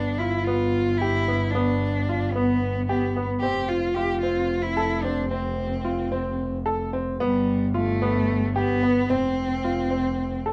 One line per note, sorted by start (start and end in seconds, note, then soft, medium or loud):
0.00 3.45 G1 medium
0.00 0.19 D4 medium
0.18 0.45 E4 medium
0.18 0.41 F4 medium
0.44 0.90 B3 medium
0.44 0.99 F4 medium
0.98 1.52 E4 medium
0.98 1.23 G4 medium
1.28 1.49 B3 medium
1.51 2.33 D4 medium
1.55 1.98 B3 medium
2.09 2.30 F4 medium
2.32 2.86 B3 medium
2.32 2.78 B3 medium
2.86 3.25 B3 medium
2.86 3.11 G4 medium
3.16 3.38 B3 medium
3.40 7.23 F1 medium
3.40 3.86 C4 medium
3.40 3.70 G4 medium
3.68 3.96 F4 medium
3.94 4.18 F4 medium
3.94 4.20 G4 medium
4.21 4.66 C4 medium
4.21 4.63 F4 medium
4.62 5.04 E4 medium
4.77 4.99 A4 medium
5.02 5.26 C4 medium
5.02 5.29 D4 medium
5.29 6.35 C4 medium
5.29 5.74 C4 medium
5.85 6.07 F4 medium
6.12 6.55 C4 medium
6.66 6.88 A4 medium
6.93 7.15 C4 medium
7.20 9.11 G1 medium
7.20 7.72 G3 medium
7.20 7.63 B3 medium
7.74 8.52 A3 medium
7.74 7.96 F4 medium
8.02 8.45 B3 medium
8.55 9.10 B3 medium
8.55 8.77 G4 medium
8.83 9.04 B3 medium
9.09 10.53 F1 medium
9.09 10.53 C4 medium
9.09 9.53 C4 medium
9.64 9.85 F4 medium
9.91 10.34 C4 medium
10.46 10.53 A4 medium